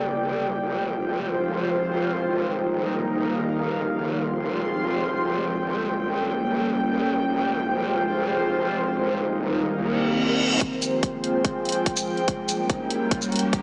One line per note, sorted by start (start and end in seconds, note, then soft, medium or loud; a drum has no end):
0.00 0.59 G1 medium
0.00 0.60 C#3 medium
0.00 0.60 G3 medium
0.00 0.60 A#3 medium
0.00 0.60 G4 medium
0.00 0.60 A#4 medium
0.00 0.61 D5 medium
0.00 2.95 G5 medium
0.00 downlifter medium
0.61 2.26 F1 medium
0.61 2.26 F3 medium
0.61 2.26 G#3 medium
0.61 2.26 C4 medium
0.61 2.95 F4 medium
0.61 2.26 G#4 medium
0.61 2.26 C5 medium
0.73 2.95 C5 medium
2.28 3.93 D#1 medium
2.28 3.93 D#3 medium
2.28 3.93 G3 medium
2.28 3.93 A#3 medium
2.28 4.61 D#4 medium
2.28 3.93 G4 medium
2.28 3.93 A#4 medium
2.37 4.61 A#4 medium
2.96 4.61 F5 medium
3.95 5.59 F1 medium
3.95 5.60 F3 medium
3.95 5.60 G#3 medium
3.95 5.60 C4 medium
3.95 6.28 F4 medium
3.95 5.60 G#4 medium
3.95 5.60 C5 medium
3.99 6.28 C6 medium
4.25 9.28 G5 medium
5.61 7.26 G1 medium
5.61 7.26 G3 medium
5.61 7.26 A#3 medium
5.61 7.26 C#4 medium
5.61 7.26 A#4 medium
5.61 7.26 C#5 medium
7.28 8.92 F1 medium
7.28 8.93 F3 medium
7.28 8.93 G#3 medium
7.28 8.93 C4 medium
7.28 9.28 F4 medium
7.28 8.93 G#4 medium
7.28 8.93 C5 medium
7.37 9.28 C5 medium
8.94 9.76 D#1 medium
8.94 10.60 D#3 medium
8.94 10.60 A#3 medium
8.94 10.11 D#4 medium
8.94 10.60 G4 medium
9.27 10.11 A#4 medium
9.32 10.11 F5 medium
9.78 10.59 C2 medium
9.78 11.28 C4 medium
9.78 reverse cymbal medium
10.15 12.95 C5 medium
10.61 12.26 F3 medium
10.61 12.26 G#3 medium
10.61 12.26 C4 medium
10.61 12.95 F4 medium
10.61 12.26 G#4 medium
10.61 12.26 C5 medium
10.61 kick medium
10.61 closed hi-hat medium
10.61 riser medium
10.69 13.62 G5 medium
10.82 closed hi-hat medium
10.82 shaker soft
11.03 kick medium
11.03 closed hi-hat medium
11.24 closed hi-hat medium
11.45 kick loud
11.45 closed hi-hat medium
11.65 closed hi-hat soft
11.69 closed hi-hat medium
11.72 closed hi-hat medium
11.86 kick medium
11.86 closed hi-hat medium
11.97 closed hi-hat medium
11.97 shaker medium
12.17 closed hi-hat soft
12.28 13.62 G3 medium
12.28 13.62 A#3 medium
12.28 13.62 C#4 medium
12.28 13.62 A#4 medium
12.28 kick medium
12.28 closed hi-hat medium
12.49 closed hi-hat medium
12.49 shaker soft
12.70 kick medium
12.70 closed hi-hat medium
12.90 closed hi-hat medium
13.11 kick loud
13.11 closed hi-hat medium
13.22 shaker medium
13.32 closed hi-hat soft
13.36 closed hi-hat medium
13.39 closed hi-hat medium
13.53 kick loud
13.53 closed hi-hat medium